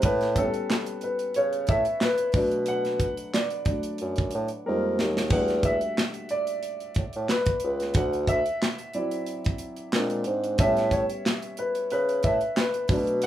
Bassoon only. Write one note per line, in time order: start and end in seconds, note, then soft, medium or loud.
0.04 0.51 A2 loud
1.38 1.66 C#3 loud
1.70 1.86 A2 medium
2.35 3.15 B2 loud
4.01 4.30 F#2 medium
4.35 4.50 A2 medium
4.68 4.96 F2 loud
5.01 5.29 D#2 loud
5.32 5.79 E2 loud
6.98 7.04 A2 soft
7.16 7.28 A2 medium
7.64 7.93 C#2 loud
7.96 8.43 D2 loud
9.95 10.24 A#2 loud
10.27 10.56 G#2 medium
10.60 11.06 A2 loud
11.93 12.21 C#3 medium
12.25 12.41 A2 medium
12.90 13.27 B2 loud